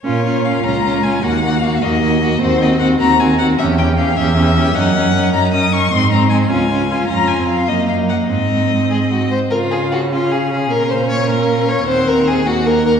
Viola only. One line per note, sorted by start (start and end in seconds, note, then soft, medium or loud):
0.04 0.24 C#4 soft
0.25 0.44 C#4 soft
0.45 0.64 C#4 soft
0.65 0.83 C#4 soft
0.84 1.04 C#4 soft
1.05 1.23 C#4 soft
1.24 1.42 A#3 soft
1.43 1.62 A#3 soft
1.62 1.82 A#3 soft
1.83 2.02 A#3 soft
2.03 2.21 A#3 soft
2.21 2.41 A#3 soft
2.42 2.61 C4 soft
2.61 2.80 C4 soft
2.81 3.00 C4 soft
3.01 3.20 C4 soft
3.21 3.40 C4 soft
3.40 3.59 C4 soft
3.60 3.78 C#4 soft
3.79 3.98 C#4 soft
3.98 4.17 C#4 soft
4.17 4.36 C#4 soft
4.37 4.56 C#4 soft
4.57 4.75 C#4 soft
4.76 4.95 C#4 soft
4.95 5.14 C#4 soft
5.15 5.33 C#4 soft
5.34 5.53 C#4 soft
5.54 5.72 C#4 soft
5.73 5.91 C#4 soft
5.93 6.11 C4 soft
6.13 6.31 C4 soft
6.31 6.50 C4 soft
6.50 6.69 C#4 soft
6.71 6.88 C#4 soft
6.89 7.08 C#4 soft
7.09 7.41 C#4 soft
7.39 7.70 C4 soft
7.68 8.30 A#3 soft
8.29 9.32 C4 soft
9.52 10.08 F4 soft
10.12 11.85 C#4 soft
11.89 12.45 C4 soft
12.46 13.00 A#3 soft